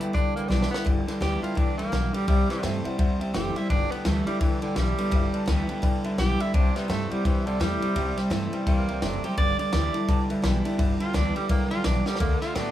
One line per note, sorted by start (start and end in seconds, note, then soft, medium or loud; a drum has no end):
0.00 0.13 G2 medium
0.00 0.13 D3 medium
0.00 0.12 G3 medium
0.00 0.13 B3 medium
0.00 0.13 E4 loud
0.00 0.09 B4 medium
0.00 0.09 D5 medium
0.00 0.09 G5 loud
0.00 muted upright bass stroke medium
0.00 closed hi-hat medium
0.13 0.34 C2 loud
0.13 0.82 D3 medium
0.13 0.34 D3 loud
0.13 0.35 D4 loud
0.13 0.27 B4 loud
0.13 0.27 D5 medium
0.13 0.28 G5 loud
0.13 kick loud
0.13 closed hi-hat medium
0.36 0.48 G1 medium
0.36 0.49 G2 medium
0.36 0.49 D3 medium
0.36 0.51 A#3 medium
0.36 0.45 B4 medium
0.36 0.45 D5 medium
0.36 0.45 G5 medium
0.36 closed hi-hat medium
0.48 0.69 B1 loud
0.48 0.70 G2 medium
0.48 0.70 E3 medium
0.48 0.70 G3 medium
0.48 0.71 B3 medium
0.48 0.70 D4 medium
0.48 0.69 E4 medium
0.48 0.63 B4 medium
0.48 0.63 D5 medium
0.48 snare medium
0.62 snare medium
0.70 0.84 G2 medium
0.70 0.84 D3 medium
0.70 0.85 B3 loud
0.70 0.85 B3 medium
0.70 0.84 E4 medium
0.70 0.80 B4 medium
0.70 0.80 D5 medium
0.74 snare loud
0.85 1.05 G1 loud
0.85 1.05 G2 medium
0.85 1.05 D3 loud
0.85 1.19 G3 medium
0.85 0.99 B4 loud
0.85 0.99 D5 medium
0.85 0.99 G5 loud
0.85 kick loud
0.85 ride medium
1.07 1.20 G2 medium
1.07 1.20 D3 medium
1.07 1.16 B4 medium
1.07 1.16 D5 medium
1.07 1.16 G5 medium
1.07 muted upright bass stroke medium
1.07 snare soft
1.07 ride medium
1.20 1.40 D2 loud
1.20 1.41 G2 loud
1.20 1.41 E3 loud
1.20 1.42 G3 medium
1.20 1.42 B3 medium
1.20 1.41 E4 medium
1.20 1.42 G4 loud
1.20 1.34 B4 medium
1.20 1.34 D5 medium
1.20 1.34 G5 medium
1.20 snare loud
1.20 ride medium
1.42 1.55 G2 medium
1.42 1.55 D3 medium
1.42 1.57 B3 soft
1.42 1.56 E4 medium
1.42 1.58 F4 medium
1.42 1.51 B4 medium
1.42 1.51 D5 medium
1.42 1.51 G5 medium
1.42 ride medium
1.55 1.76 C2 medium
1.55 1.76 G2 medium
1.55 1.76 D3 medium
1.55 1.90 E3 medium
1.55 1.77 D4 medium
1.55 1.70 B4 medium
1.55 1.70 D5 medium
1.55 1.70 G5 loud
1.55 kick loud
1.55 ride medium
1.78 1.91 G1 medium
1.78 1.91 G2 medium
1.78 1.91 D3 medium
1.78 2.16 A#3 loud
1.78 1.87 B4 medium
1.78 1.87 D5 medium
1.78 1.87 G5 medium
1.78 ride medium
1.92 2.11 B1 loud
1.92 2.26 B2 medium
1.92 2.12 E3 medium
1.92 2.05 B4 medium
1.92 2.05 F#5 medium
1.92 snare loud
1.92 ride medium
2.13 2.26 G2 medium
2.13 2.26 D3 medium
2.13 2.27 G3 loud
2.13 2.23 B4 medium
2.13 2.23 D5 medium
2.13 2.23 G5 medium
2.13 ride medium
2.27 2.47 C2 loud
2.27 2.47 C3 medium
2.27 2.96 C3 loud
2.27 2.48 G3 loud
2.27 2.49 G3 loud
2.27 2.41 C5 medium
2.27 2.41 E5 medium
2.27 2.41 G5 loud
2.27 kick loud
2.27 ride medium
2.49 2.61 C3 medium
2.49 2.64 E3 medium
2.49 2.62 G3 loud
2.49 2.58 C5 medium
2.49 2.58 E5 medium
2.49 muted upright bass stroke medium
2.49 snare soft
2.49 ride medium
2.63 2.83 G2 loud
2.63 2.83 C3 medium
2.63 2.84 E3 medium
2.63 2.83 A3 loud
2.63 2.84 A3 medium
2.63 2.85 C4 loud
2.63 2.83 E4 loud
2.63 2.77 C5 medium
2.63 2.77 E5 medium
2.63 2.77 G5 medium
2.63 snare loud
2.63 ride medium
2.84 2.97 C3 medium
2.84 2.97 G3 medium
2.84 2.99 C4 soft
2.84 2.98 E4 medium
2.84 2.93 C5 medium
2.84 2.94 E5 medium
2.84 2.94 F#5 loud
2.84 muted upright bass stroke medium
2.84 ride medium
2.98 3.18 E2 medium
2.98 3.67 G2 medium
2.98 3.18 C3 medium
2.98 3.18 G3 medium
2.98 3.12 C5 loud
2.98 3.12 E5 loud
2.98 3.12 F#5 loud
2.98 kick loud
2.98 ride medium
3.20 3.33 C3 medium
3.20 3.33 G3 medium
3.20 3.29 C5 medium
3.20 3.29 E5 medium
3.20 3.29 G5 loud
3.20 ride medium
3.34 3.53 F#1 loud
3.34 3.54 C3 medium
3.34 3.55 E3 medium
3.34 3.54 A3 loud
3.34 3.56 A3 medium
3.34 3.56 C4 medium
3.34 3.54 E4 medium
3.34 3.58 G4 loud
3.34 snare loud
3.34 ride medium
3.55 3.69 C3 medium
3.55 3.69 G3 medium
3.55 3.70 C4 medium
3.55 3.69 E4 medium
3.55 3.65 C5 medium
3.55 3.65 E5 medium
3.55 3.65 G5 medium
3.55 muted upright bass stroke medium
3.55 ride medium
3.69 3.89 G1 loud
3.69 3.89 G2 medium
3.69 3.90 D3 loud
3.69 4.04 G3 medium
3.69 3.93 D4 loud
3.69 3.84 B4 loud
3.69 3.84 D5 medium
3.69 3.84 G5 loud
3.69 kick loud
3.69 ride medium
3.91 4.04 G2 medium
3.91 4.05 D3 medium
3.91 4.08 B3 medium
3.91 4.01 B4 medium
3.91 4.00 D5 medium
3.91 4.01 G5 medium
3.91 muted upright bass stroke medium
3.91 ride medium
4.05 4.25 D2 loud
4.05 4.25 G2 medium
4.05 4.25 E3 loud
4.05 4.26 G3 medium
4.05 4.26 A3 medium
4.05 4.27 B3 loud
4.05 4.25 E4 medium
4.05 4.19 B4 medium
4.05 4.19 D5 medium
4.05 4.19 A5 medium
4.05 snare loud
4.05 ride medium
4.26 4.40 G2 medium
4.26 4.40 D3 medium
4.26 4.42 G3 loud
4.26 4.41 B3 medium
4.26 4.40 E4 medium
4.26 4.36 B4 medium
4.26 4.35 D5 medium
4.26 4.36 G5 medium
4.26 ride medium
4.40 4.60 C2 loud
4.40 4.60 G2 medium
4.40 5.09 D3 medium
4.40 4.61 D3 loud
4.40 4.62 E3 medium
4.40 4.54 B4 loud
4.40 4.54 D5 loud
4.40 4.55 G5 loud
4.40 kick loud
4.40 ride medium
4.62 4.75 G1 loud
4.62 4.75 G2 medium
4.62 4.78 D3 medium
4.62 4.75 D3 medium
4.62 4.71 B4 medium
4.62 4.72 D5 medium
4.62 4.72 G5 medium
4.62 ride medium
4.76 4.95 B1 medium
4.76 4.96 G2 medium
4.76 4.96 E3 medium
4.76 4.97 G3 medium
4.76 5.45 G3 loud
4.76 4.98 B3 medium
4.76 4.96 E4 medium
4.76 4.90 B4 medium
4.76 4.90 D5 medium
4.76 4.90 G5 medium
4.76 snare loud
4.76 ride medium
4.98 5.10 G2 medium
4.98 5.11 D3 medium
4.98 5.12 B3 soft
4.98 5.11 E4 medium
4.98 5.07 B4 medium
4.98 5.07 D5 medium
4.98 5.07 G5 medium
4.98 ride medium
5.11 5.31 G1 medium
5.11 5.31 G2 medium
5.11 5.32 D3 loud
5.11 5.44 G3 loud
5.11 5.26 B4 loud
5.11 5.26 D5 medium
5.11 5.26 E5 loud
5.11 kick loud
5.11 ride medium
5.33 5.46 G2 medium
5.33 5.47 D3 medium
5.33 5.42 B4 medium
5.33 5.42 D5 medium
5.33 5.42 A5 medium
5.33 ride medium
5.46 5.66 D2 loud
5.46 5.67 G2 medium
5.46 5.67 E3 loud
5.46 5.67 G3 medium
5.46 5.68 B3 loud
5.46 5.66 E4 loud
5.46 5.61 B4 medium
5.46 5.61 D5 medium
5.46 5.61 G5 loud
5.46 kick medium
5.46 snare loud
5.46 ride medium
5.67 5.82 G2 medium
5.67 5.82 D3 medium
5.67 5.83 B3 soft
5.67 5.82 E4 medium
5.67 5.78 B4 medium
5.67 5.78 D5 medium
5.67 5.78 G5 medium
5.67 muted upright bass stroke medium
5.67 ride medium
5.82 6.02 C2 loud
5.82 6.02 G2 medium
5.82 6.51 D3 medium
5.82 6.03 D3 medium
5.82 5.96 B4 loud
5.82 5.96 D5 loud
5.82 5.96 G5 loud
5.82 kick loud
5.82 ride loud
6.04 6.17 G1 medium
6.04 6.17 G2 medium
6.04 6.18 D3 medium
6.04 6.13 B4 loud
6.04 6.13 D5 medium
6.04 6.13 E5 loud
6.04 ride medium
6.18 6.37 B1 medium
6.18 6.38 G2 medium
6.18 6.38 E3 loud
6.18 6.52 G3 medium
6.18 6.53 B3 medium
6.18 6.53 E4 medium
6.18 6.42 G4 loud
6.18 6.31 F#5 medium
6.18 snare loud
6.18 ride medium
6.39 6.53 G2 medium
6.39 6.53 D3 medium
6.39 6.54 E4 loud
6.39 6.48 B4 medium
6.39 6.48 D5 medium
6.39 6.48 G5 medium
6.39 ride medium
6.54 6.73 C2 loud
6.54 7.22 C3 loud
6.54 6.74 C3 medium
6.54 6.74 G3 medium
6.54 6.78 D4 medium
6.54 6.67 C5 loud
6.54 6.67 E5 loud
6.54 6.67 G5 loud
6.54 kick loud
6.54 ride medium
6.75 6.88 C3 medium
6.75 6.88 G3 medium
6.75 6.89 B3 medium
6.75 6.84 C5 medium
6.75 6.84 E5 medium
6.75 6.84 F#5 medium
6.75 snare soft
6.75 ride medium
6.88 7.08 G2 medium
6.88 7.09 C3 medium
6.88 7.09 E3 medium
6.88 7.10 A3 medium
6.88 7.13 A3 medium
6.88 7.09 A3 loud
6.88 7.10 C4 medium
6.88 7.09 E4 medium
6.88 7.02 C5 medium
6.88 7.02 E5 medium
6.88 7.02 A5 medium
6.88 snare loud
6.88 ride medium
7.10 7.24 C3 medium
7.10 7.27 G3 medium
7.10 7.24 G3 medium
7.10 7.25 C4 soft
7.10 7.24 E4 medium
7.10 7.19 C5 medium
7.10 7.19 E5 medium
7.10 7.19 F#5 medium
7.10 muted upright bass stroke medium
7.10 ride medium
7.25 7.44 E2 loud
7.25 7.93 G2 medium
7.25 7.44 C3 medium
7.25 7.46 E3 medium
7.25 7.44 G3 medium
7.25 7.38 C5 loud
7.25 7.38 E5 medium
7.25 7.38 G5 medium
7.25 kick loud
7.25 ride medium
7.46 7.59 C2 medium
7.46 7.59 C3 medium
7.46 7.63 D3 loud
7.46 7.59 G3 medium
7.46 7.54 C5 medium
7.46 7.54 E5 medium
7.46 7.54 A5 medium
7.46 ride medium
7.60 7.79 E2 loud
7.60 7.79 C3 medium
7.60 7.81 E3 medium
7.60 8.29 G3 loud
7.60 7.81 A3 medium
7.60 7.80 A3 loud
7.60 7.81 C4 medium
7.60 7.80 E4 medium
7.60 7.73 C5 medium
7.60 7.73 G5 medium
7.60 snare loud
7.60 ride medium
7.81 7.94 C3 medium
7.81 7.95 G3 medium
7.81 7.96 C4 medium
7.81 7.95 E4 medium
7.81 7.91 C5 medium
7.81 7.91 E5 medium
7.81 7.91 G5 medium
7.81 muted upright bass stroke medium
7.81 ride medium
7.95 8.15 C2 medium
7.95 8.15 C3 medium
7.95 8.64 C3 loud
7.95 8.15 G3 medium
7.95 8.08 C5 medium
7.95 8.09 E5 medium
7.95 8.08 G5 loud
7.95 kick loud
7.95 ride loud
8.16 8.30 C3 medium
8.16 8.30 G3 medium
8.16 8.25 C5 medium
8.16 8.25 E5 medium
8.16 8.25 G5 loud
8.16 muted upright bass stroke medium
8.16 snare soft
8.16 ride medium
8.30 8.50 G2 loud
8.30 8.51 C3 medium
8.30 8.51 E3 medium
8.30 8.51 A3 loud
8.30 8.52 C4 loud
8.30 8.51 E4 loud
8.30 8.44 C5 medium
8.30 8.44 E5 medium
8.30 8.44 G5 loud
8.30 snare loud
8.30 ride medium
8.52 8.65 C3 medium
8.52 8.66 G3 medium
8.52 8.67 C4 soft
8.52 8.66 E4 medium
8.52 8.61 C5 loud
8.52 8.61 E5 medium
8.52 8.61 G5 loud
8.52 muted upright bass stroke medium
8.52 ride medium
8.66 8.86 E2 loud
8.66 8.86 C3 medium
8.66 9.01 E3 medium
8.66 8.86 G3 loud
8.66 9.04 A#3 medium
8.66 8.79 C5 loud
8.66 8.79 E5 medium
8.66 8.79 G5 loud
8.66 kick loud
8.66 ride medium
8.88 9.00 C2 loud
8.88 9.01 C3 medium
8.88 9.01 G3 medium
8.88 8.96 C5 medium
8.88 8.96 E5 medium
8.88 8.96 G5 medium
8.88 ride medium
9.01 9.21 F#1 loud
9.01 9.22 C3 medium
9.01 9.36 F#3 medium
9.01 9.22 A3 loud
9.01 9.23 D4 medium
9.01 9.15 C5 medium
9.01 9.15 E5 medium
9.01 9.15 G5 medium
9.01 snare loud
9.01 ride medium
9.24 9.36 C3 medium
9.24 9.36 G3 medium
9.24 9.37 G4 medium
9.24 9.32 C5 medium
9.24 9.32 E5 medium
9.24 9.32 G5 medium
9.24 muted upright bass stroke medium
9.24 ride medium
9.37 9.56 G1 medium
9.37 9.57 G2 medium
9.37 9.57 D3 loud
9.37 9.71 G3 loud
9.37 9.50 B4 loud
9.37 9.58 D5 loud
9.37 9.51 D5 medium
9.37 9.51 G5 loud
9.37 kick loud
9.37 ride medium
9.59 9.71 G2 medium
9.59 9.72 D3 medium
9.59 9.68 B4 medium
9.59 9.67 D5 medium
9.59 10.28 D5 loud
9.59 9.68 G5 medium
9.59 muted upright bass stroke medium
9.59 ride medium
9.72 9.92 D2 loud
9.72 9.92 G2 medium
9.72 9.92 E3 loud
9.72 9.93 G3 medium
9.72 9.94 B3 loud
9.72 9.93 E4 loud
9.72 9.86 B4 medium
9.72 9.86 G5 medium
9.72 snare loud
9.72 ride medium
9.94 10.07 G2 medium
9.94 10.07 D3 medium
9.94 10.09 B3 soft
9.94 10.08 E4 medium
9.94 10.03 B4 medium
9.94 10.03 D5 medium
9.94 10.03 A5 medium
9.94 muted upright bass stroke medium
9.94 ride medium
10.08 10.27 C2 loud
10.08 10.27 G2 medium
10.08 10.28 D3 loud
10.08 10.77 D3 medium
10.08 10.21 B4 loud
10.08 10.21 D5 loud
10.08 10.21 A5 loud
10.08 kick loud
10.08 ride medium
10.30 10.42 G1 medium
10.30 10.42 G2 medium
10.30 10.42 D3 medium
10.30 10.38 B4 loud
10.30 10.38 D5 medium
10.30 10.38 E5 loud
10.30 ride medium
10.42 10.62 B1 loud
10.42 10.63 G2 medium
10.42 10.63 E3 loud
10.42 10.77 G3 medium
10.42 10.77 B3 medium
10.42 10.78 E4 medium
10.42 10.57 B4 medium
10.42 10.57 D5 medium
10.42 10.57 G5 loud
10.42 snare loud
10.42 ride medium
10.65 10.77 G2 medium
10.65 10.77 D3 medium
10.65 10.73 B4 medium
10.65 10.74 D5 medium
10.65 10.74 G5 medium
10.65 ride medium
10.78 10.98 G1 medium
10.78 10.98 G2 medium
10.78 10.98 D3 loud
10.78 11.12 G3 medium
10.78 10.92 B4 loud
10.78 10.92 D5 loud
10.78 10.92 E5 loud
10.78 kick loud
10.78 ride loud
11.00 11.13 G2 medium
11.00 11.13 D3 loud
11.00 11.16 F4 loud
11.00 11.09 B4 medium
11.00 11.09 D5 medium
11.00 11.09 G5 medium
11.00 ride medium
11.13 11.33 D2 loud
11.13 11.33 G2 loud
11.13 11.34 E3 loud
11.13 11.34 G3 medium
11.13 11.35 B3 loud
11.13 11.35 D4 loud
11.13 11.33 E4 loud
11.13 11.27 B4 medium
11.13 11.27 D5 medium
11.13 11.27 G5 medium
11.13 kick medium
11.13 snare loud
11.13 ride medium
11.34 11.48 G2 medium
11.34 11.48 D3 medium
11.34 11.50 G3 medium
11.34 11.49 B3 soft
11.34 11.48 E4 medium
11.34 11.44 B4 medium
11.34 11.44 D5 medium
11.34 11.44 G5 medium
11.34 muted upright bass stroke medium
11.34 ride medium
11.49 11.69 C2 medium
11.49 11.69 G2 medium
11.49 11.69 D3 loud
11.49 11.84 F#3 medium
11.49 11.70 A#3 medium
11.49 11.62 B4 medium
11.49 11.62 D5 medium
11.49 11.62 G5 loud
11.49 kick loud
11.49 ride loud
11.70 11.83 G1 medium
11.70 11.83 G2 medium
11.70 11.83 D3 medium
11.70 11.86 F4 loud
11.70 11.79 B4 medium
11.70 11.80 D5 medium
11.70 11.79 G5 medium
11.70 ride medium
11.84 12.04 B1 loud
11.84 12.04 G2 medium
11.84 12.19 C3 medium
11.84 12.04 E3 loud
11.84 12.08 D4 medium
11.84 11.98 B4 medium
11.84 11.98 D5 medium
11.84 11.98 G5 medium
11.84 snare loud
11.84 ride medium
12.06 12.19 G2 medium
12.06 12.19 D3 medium
12.06 12.20 G3 loud
12.06 12.15 B4 medium
12.06 12.15 D5 medium
12.06 12.15 F#5 medium
12.06 snare medium
12.15 snare medium
12.20 12.39 D2 medium
12.20 12.39 D3 medium
12.20 12.54 D3 loud
12.20 12.40 A3 medium
12.20 12.41 A#3 medium
12.20 12.33 A4 loud
12.20 12.33 D5 medium
12.20 12.33 F#5 loud
12.20 kick loud
12.20 ride loud
12.41 12.54 D3 medium
12.41 12.54 A3 medium
12.41 12.56 F4 loud
12.41 12.50 A4 medium
12.41 12.50 D5 medium
12.41 12.50 F#5 medium
12.41 snare soft
12.41 ride medium
12.55 12.71 A2 medium
12.55 12.71 D3 loud
12.55 12.71 D3 medium
12.55 12.71 A3 loud
12.55 12.71 B3 loud
12.55 12.71 D4 medium
12.55 12.71 F#4 loud
12.55 12.68 A4 medium
12.55 12.68 D5 medium
12.55 12.68 F#5 medium
12.55 snare loud
12.55 ride medium